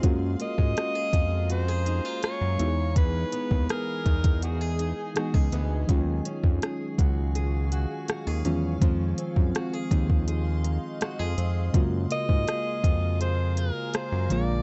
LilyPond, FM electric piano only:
\new Staff \with { instrumentName = "FM electric piano" } { \time 4/4 \key ges \lydian \tempo 4 = 82 <aes bes des' f' ges'>2.~ <aes bes des' f' ges'>8 <e gis b dis' ges' gis'>8~ | <e gis b dis' ges' gis'>2. <e gis b dis' gis'>4 | <ees ges aes des' f'>2.~ <ees ges aes des' f'>8 <ees ges aes des' f'>8 | <ees f aes c' f'>1 |
<des aes bes f' ges'>2.~ <des aes bes f' ges'>8 <d f aes bes f'>8 | }